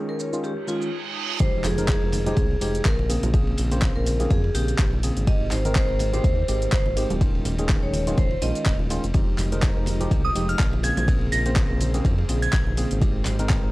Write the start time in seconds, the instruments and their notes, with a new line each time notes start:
Already playing: tine electric piano D#3 G#3 C#4 G#4, analog synth pad G#3 D#4 F4 C#5
0.09 vibraphone A#4
0.20 ride, shaker
0.32 tine electric piano D#3 G#3 C#4 F4, snare, shaker
0.44 vibraphone G4, ride, reverse cymbal, shaker
0.56 ride
0.68 tine electric piano D#3 G#3 C#4 F4, vibraphone F4, ride, shaker
0.82 shaker
1.40 tine electric piano F3 G#3 D#4 G4, vibraphone C5, kick, closed hi-hat, ride, impact, high conga, shaker
1.64 analog synth bass F1, vibraphone G#4, clap, open hi-hat, ride, low conga, shaker
1.78 tine electric piano F3 G#3 D#4 A#4, closed hi-hat, high conga, shaker
1.88 vibraphone G#4, kick, snare, clap, closed hi-hat, ride, shaker
2.02 analog synth bass F1, high bongo
2.12 open hi-hat, ride, high conga, shaker
2.26 tine electric piano F3 G#3 D#4 G4, vibraphone G#4, closed hi-hat, high bongo, low conga, shaker
2.36 analog synth bass C2, kick, closed hi-hat, ride, shaker
2.51 high conga
2.61 analog synth bass F1, tine electric piano F3 G#3 D#4 G4, vibraphone G#4, open hi-hat, ride, shaker
2.75 closed hi-hat, shaker
2.85 analog synth bass A#1, vibraphone A#4, kick, snare, clap, closed hi-hat, ride, shaker
2.99 ride, high conga
3.09 tine electric piano C#3 A#3 C4 G#4, snare, open hi-hat, ride, high bongo, shaker
3.23 analog synth bass A#1, closed hi-hat, low conga, shaker
3.33 tine electric piano C#3 A#3 C4 G#4, kick, closed hi-hat, ride, high conga, shaker
3.47 ride
3.57 analog synth bass A#1, open hi-hat, ride, shaker
3.71 tine electric piano C#3 A#3 C4 C5, closed hi-hat, ride, high conga, shaker
3.81 kick, snare, clap, closed hi-hat, ride, shaker
3.96 analog synth bass A#1, vibraphone A#4, high bongo
4.06 open hi-hat, ride, high conga, shaker
4.20 tine electric piano C#3 A#3 C4 G#4, snare, closed hi-hat, high bongo, low conga, shaker
4.30 analog synth bass F2, vibraphone G#4, kick, closed hi-hat, ride, low conga, shaker
4.44 ride, high conga
4.55 analog synth bass A#1, tine electric piano C#3 A#3 C4 G#4, vibraphone G4, open hi-hat, ride, shaker
4.68 closed hi-hat, shaker
4.78 analog synth bass A#1, kick, snare, clap, closed hi-hat, ride, shaker
4.93 high conga
5.03 tine electric piano C#3 A#3 C4 G#4, open hi-hat, ride, shaker
5.17 analog synth bass G#1, closed hi-hat, shaker
5.27 tine electric piano D#3 G#3 C4 G4, vibraphone D#5, kick, closed hi-hat, ride, high conga, shaker
5.51 analog synth bass G#1, vibraphone C5, clap, open hi-hat, ride, low conga, shaker
5.65 tine electric piano D#3 G#3 C4 A#4, closed hi-hat, high conga, shaker
5.75 vibraphone C5, kick, snare, clap, closed hi-hat, ride, shaker
5.89 analog synth bass G#1, high bongo
5.99 open hi-hat, ride, high conga, shaker
6.13 tine electric piano D#3 G#3 C4 G4, vibraphone C5, closed hi-hat, high bongo, low conga, shaker
6.24 analog synth bass D#2, kick, closed hi-hat, ride, shaker
6.37 high conga
6.48 analog synth bass G#1, tine electric piano D#3 G#3 C4 G4, vibraphone C5, open hi-hat, ride, shaker
6.62 closed hi-hat, shaker
6.72 analog synth bass G#1, vibraphone C5, kick, snare, clap, closed hi-hat, ride, shaker
6.86 ride, high conga
6.97 tine electric piano D#3 G#3 C4 G4, snare, open hi-hat, ride, high bongo, shaker
7.10 analog synth bass D#1, closed hi-hat, low conga, shaker
7.21 tine electric piano D#3 G#3 C#4 F4, kick, closed hi-hat, ride, high conga, shaker
7.35 ride
7.45 analog synth bass D#1, open hi-hat, ride, low conga, shaker
7.58 tine electric piano D#3 G#3 C#4 G#4, closed hi-hat, ride, high conga, shaker
7.69 kick, snare, clap, closed hi-hat, ride, shaker
7.83 analog synth bass D#1, vibraphone C#5, high bongo
7.93 open hi-hat, ride, high conga, shaker
8.07 tine electric piano D#3 G#3 C#4 F4, snare, closed hi-hat, high bongo, low conga, shaker
8.17 analog synth bass D#1, vibraphone C5, kick, closed hi-hat, ride, low conga, shaker
8.30 ride, high conga
8.42 analog synth bass A#1, tine electric piano D#3 G#3 C#4 F4, vibraphone D#5, open hi-hat, ride, shaker
8.55 closed hi-hat, shaker
8.66 analog synth bass D#1, kick, snare, clap, closed hi-hat, ride, shaker
8.79 high conga
8.90 tine electric piano D#3 G#3 C#4 F4, open hi-hat, ride, shaker
9.04 analog synth bass F1, closed hi-hat, shaker
9.14 tine electric piano F3 G#3 D#4 G4, analog synth pad G#3 F4 G4 D#5, kick, closed hi-hat, ride, high conga, shaker
9.38 analog synth bass F1, clap, open hi-hat, ride, low conga, shaker
9.52 tine electric piano F3 G#3 D#4 A#4, closed hi-hat, high conga, shaker
9.62 kick, snare, clap, closed hi-hat, ride, shaker
9.76 analog synth bass F1, high bongo
9.86 open hi-hat, ride, high conga, shaker
10.00 tine electric piano F3 G#3 D#4 G4, closed hi-hat, high bongo, low conga, shaker
10.11 analog synth bass C2, kick, closed hi-hat, ride, shaker
10.25 synth bell D#6, high conga
10.35 analog synth bass F1, tine electric piano F3 G#3 D#4 G4, open hi-hat, ride, shaker
10.49 synth bell F6, closed hi-hat, shaker
10.59 analog synth bass A#1, kick, snare, clap, closed hi-hat, ride, shaker
10.73 ride, high conga
10.83 tine electric piano C#3 A#3 C4 G#4, analog synth pad A#3 G#4 C5, synth bell G#6, snare, open hi-hat, ride, high bongo, shaker
10.97 analog synth bass A#1, synth bell G#6, closed hi-hat, low conga, shaker
11.08 tine electric piano C#3 A#3 C4 G#4, kick, closed hi-hat, ride, high conga, shaker
11.21 ride
11.32 analog synth bass A#1, synth bell A#6, open hi-hat, ride, shaker
11.45 tine electric piano C#3 A#3 C4 C5, closed hi-hat, ride, high conga, shaker
11.56 kick, snare, clap, closed hi-hat, ride, shaker
11.70 analog synth bass A#1, high bongo
11.81 open hi-hat, ride, high conga, shaker
11.94 tine electric piano C#3 A#3 C4 G#4, snare, closed hi-hat, high bongo, low conga, shaker
12.05 analog synth bass F2, kick, closed hi-hat, ride, low conga, shaker
12.18 ride, high conga
12.29 analog synth bass A#1, tine electric piano C#3 A#3 C4 G#4, open hi-hat, ride, shaker
12.42 synth bell G#6, closed hi-hat, shaker
12.53 analog synth bass A#1, kick, snare, clap, closed hi-hat, ride, shaker
12.67 high conga
12.77 tine electric piano C#3 A#3 C4 G#4, open hi-hat, ride, shaker
12.91 analog synth bass G#1, closed hi-hat, shaker
13.01 tine electric piano D#3 G#3 C4 G4, analog synth pad G#3 D#4 G4, kick, closed hi-hat, ride, high conga, shaker
13.25 analog synth bass G#1, clap, open hi-hat, ride, low conga, shaker
13.39 tine electric piano D#3 G#3 C4 A#4, closed hi-hat, high conga, shaker
13.49 kick, snare, clap, closed hi-hat, ride, shaker
13.63 analog synth bass G#1, high bongo